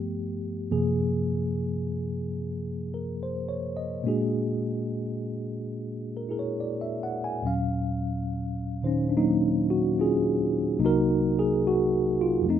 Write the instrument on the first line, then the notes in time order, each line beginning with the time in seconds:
tine electric piano
Already playing: G2 F3 A3 B3 G4
0.71 F#2 C3 F3 A#3 G#4
2.94 A#4
3.23 C5
3.49 C#5
3.77 D#5
4.03 A#2 G#3 A#3 D4 F#4
4.08 G#4
6.17 A#4
6.29 E4 G#4 A#4
6.39 C#5
6.60 D5
6.81 E5
7.03 F#5
7.24 G#5
7.42 D#2 A#2 F#3 C#4
7.47 F5
8.83 A#2 D#3 C#4 D#4 C5
9.09 D4
9.17 F#3 A#3 D#4
9.70 F#4
9.99 C#4 F4 G#4
10.78 C2 C3 F#3 A#3 D#4
10.84 D#4 F#4 A#4
11.39 G#4
11.67 F#4
12.21 F4
12.40 F2 F3
12.45 A3 C4
12.50 A3 D#4